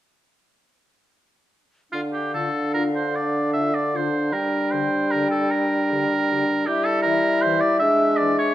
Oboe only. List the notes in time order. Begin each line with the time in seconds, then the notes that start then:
1.93 F4
2.13 G4
2.34 A4
2.74 A#4
2.95 C5
3.15 D5
3.53 E5
3.75 D5
3.96 C5
4.33 A#4
4.71 C5
5.11 A#4
5.30 A4
5.51 A#4
6.66 G4
6.85 A4
7.02 A#4
7.42 C5
7.60 D5
7.79 E5
8.17 D5
8.39 C#5